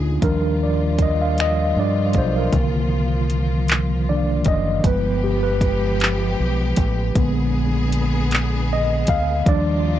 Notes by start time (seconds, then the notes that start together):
Already playing: D2 A#2 D3 G#3 B3 D4 D#4 G#4
0.22 D#2 F3 G3 D4 F4 A#4, kick, closed hi-hat
0.63 D5
0.99 D#5, kick, closed hi-hat
1.21 F5
1.38 D#5, finger snap, closed hi-hat
1.76 G2 F3 G3 D4 D5
2.13 B1, kick, closed hi-hat
2.18 C5
2.38 A#4
2.53 C2 D#3 F3 A#3, kick, closed hi-hat
2.57 D3
3.30 closed hi-hat
3.68 clap, closed hi-hat
4.09 D#3 F3 A#3 D4 D5
4.45 F#1 D#5, kick, closed hi-hat
4.84 G1 F3 G#3 B3 G4 B4, kick, closed hi-hat
5.24 G4
5.43 B4
5.61 kick, closed hi-hat
6.00 clap, closed hi-hat
6.40 B1
6.76 A1, kick, closed hi-hat
7.15 A#1 A#2 D3 G#3 B3 G#4, kick, closed hi-hat
7.92 closed hi-hat
8.31 clap, closed hi-hat
8.73 D#5
9.07 D2 F5, kick, closed hi-hat
9.46 D#2 D#3 F3 G3 D4 F4 D5, kick, closed hi-hat